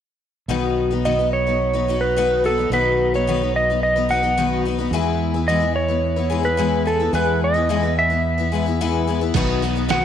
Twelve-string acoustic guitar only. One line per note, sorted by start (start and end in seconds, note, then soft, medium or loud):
0.49 0.91 B2 medium
0.49 0.91 D#3 medium
0.49 0.91 F#3 medium
0.49 0.91 B3 medium
0.49 0.91 D#4 medium
0.49 0.90 B4 medium
0.91 1.04 F#3 soft
0.91 1.04 B3 soft
0.91 1.05 D#4 soft
0.91 1.05 B4 soft
1.05 1.19 B2 medium
1.05 1.19 D#3 medium
1.05 1.19 F#3 medium
1.05 1.19 B3 medium
1.05 1.19 D#4 medium
1.05 1.18 B4 medium
1.19 1.48 F#3 soft
1.19 1.47 B3 soft
1.19 1.46 D#4 soft
1.19 1.45 B4 soft
1.47 1.75 F#3 soft
1.47 1.74 B3 soft
1.47 1.73 D#4 soft
1.47 1.72 B4 soft
1.73 1.87 F#3 soft
1.73 1.88 B3 soft
1.73 1.88 D#4 soft
1.73 1.88 B4 soft
1.88 2.16 F#3 medium
1.88 2.16 B3 medium
1.88 2.17 D#4 medium
1.88 2.17 B4 medium
2.16 2.44 B2 medium
2.16 2.44 D#3 medium
2.16 2.43 F#3 medium
2.16 2.44 B3 medium
2.16 2.44 D#4 medium
2.16 2.45 B4 medium
2.44 2.57 F#3 medium
2.44 2.58 B3 medium
2.44 2.58 D#4 medium
2.44 2.56 B4 medium
2.58 2.72 F#3 soft
2.58 2.72 B3 soft
2.58 2.72 D#4 soft
2.58 2.71 B4 soft
2.72 3.13 B2 medium
2.72 3.13 D#3 medium
2.72 3.13 F#3 medium
2.72 3.13 B3 medium
2.72 3.13 D#4 medium
2.72 3.13 B4 medium
3.14 3.27 F#3 soft
3.14 3.27 B3 soft
3.14 3.27 D#4 soft
3.14 3.27 B4 soft
3.27 3.41 B2 medium
3.27 3.41 D#3 medium
3.27 3.41 F#3 medium
3.27 3.41 B3 medium
3.27 3.41 D#4 medium
3.27 3.40 B4 medium
3.41 3.70 F#3 soft
3.41 3.69 B3 soft
3.41 3.69 D#4 soft
3.41 3.69 B4 soft
3.70 3.97 F#3 soft
3.70 3.96 B3 soft
3.70 3.96 D#4 soft
3.70 3.95 B4 soft
3.96 4.08 F#3 soft
3.96 4.09 B3 soft
3.96 4.10 D#4 soft
3.96 4.10 B4 soft
4.09 4.23 F#3 medium
4.09 4.23 B3 medium
4.09 4.22 D#4 medium
4.09 4.22 B4 medium
4.23 4.37 F#3 soft
4.23 4.37 B3 soft
4.23 4.37 D#4 soft
4.23 4.37 B4 soft
4.37 4.65 B2 medium
4.37 4.65 D#3 medium
4.37 4.64 F#3 medium
4.37 4.65 B3 medium
4.37 4.66 D#4 medium
4.37 4.66 B4 medium
4.65 4.79 F#3 medium
4.65 4.79 B3 medium
4.65 4.78 D#4 medium
4.65 4.77 B4 medium
4.79 4.93 F#3 soft
4.79 4.93 B3 soft
4.79 4.93 D#4 soft
4.79 4.92 B4 medium
4.93 5.34 E3 medium
4.93 5.34 G#3 medium
4.93 5.35 B3 medium
4.93 5.35 E4 medium
4.93 5.33 B4 medium
5.34 5.48 B3 soft
5.34 5.48 E4 soft
5.34 5.48 B4 medium
5.48 5.62 E3 medium
5.48 5.62 G#3 medium
5.48 5.62 B3 medium
5.48 5.61 E4 medium
5.48 5.59 B4 medium
5.60 5.90 B3 soft
5.60 5.88 E4 soft
5.60 5.87 B4 soft
5.88 6.17 B3 soft
5.88 6.16 E4 soft
5.88 6.15 B4 soft
6.16 6.29 B3 soft
6.16 6.30 E4 soft
6.16 6.30 B4 soft
6.30 6.44 G#3 medium
6.30 6.44 B3 medium
6.30 6.43 E4 medium
6.30 6.42 B4 medium
6.43 6.57 B3 soft
6.43 6.58 E4 soft
6.43 6.58 B4 soft
6.57 6.85 E3 medium
6.57 6.84 G#3 medium
6.57 6.86 B3 medium
6.57 6.87 E4 medium
6.57 6.87 B4 medium
6.85 7.00 G#3 medium
6.85 7.00 B3 medium
6.85 6.99 E4 medium
6.85 6.98 B4 medium
7.00 7.13 B3 soft
7.00 7.14 E4 soft
7.00 7.14 B4 soft
7.13 7.55 E3 medium
7.13 7.55 G#3 medium
7.13 7.55 B3 medium
7.13 7.55 E4 medium
7.13 7.53 B4 medium
7.54 7.69 B3 soft
7.54 7.69 E4 soft
7.54 7.68 B4 medium
7.69 7.83 E3 medium
7.69 7.83 G#3 medium
7.69 7.83 B3 medium
7.69 7.83 E4 medium
7.69 7.81 B4 medium
7.83 8.11 B3 soft
7.83 8.10 E4 soft
7.83 8.09 B4 soft
8.10 8.39 B3 soft
8.10 8.38 E4 soft
8.10 8.37 B4 soft
8.38 8.52 B3 soft
8.38 8.52 E4 soft
8.38 8.52 B4 soft
8.52 8.65 G#3 medium
8.52 8.66 B3 medium
8.52 8.67 E4 medium
8.52 8.65 B4 medium
8.66 8.80 B3 soft
8.66 8.80 E4 soft
8.66 8.80 B4 medium
8.81 9.08 E3 medium
8.81 9.06 G#3 medium
8.81 9.07 B3 medium
8.81 9.08 E4 medium
8.81 9.08 B4 medium
9.07 9.21 G#3 medium
9.07 9.21 B3 medium
9.07 9.22 E4 medium
9.07 9.20 B4 medium
9.21 9.35 B3 soft
9.21 9.35 E4 soft
9.21 9.35 B4 medium
9.35 9.62 B2 medium
9.35 9.62 D#3 medium
9.35 9.61 F#3 medium
9.35 9.62 B3 medium
9.35 9.63 D#4 medium
9.35 9.63 B4 medium
9.62 9.76 F#3 medium
9.62 9.76 B3 medium
9.62 9.75 D#4 medium
9.62 9.74 B4 medium
9.76 9.88 F#3 soft
9.76 9.89 B3 soft
9.76 9.89 D#4 soft
9.76 9.89 B4 soft
9.89 10.05 B2 medium
9.89 10.05 D#3 medium
9.89 10.05 F#3 medium
9.89 10.05 B3 medium
9.89 10.05 D#4 medium
9.89 10.05 B4 medium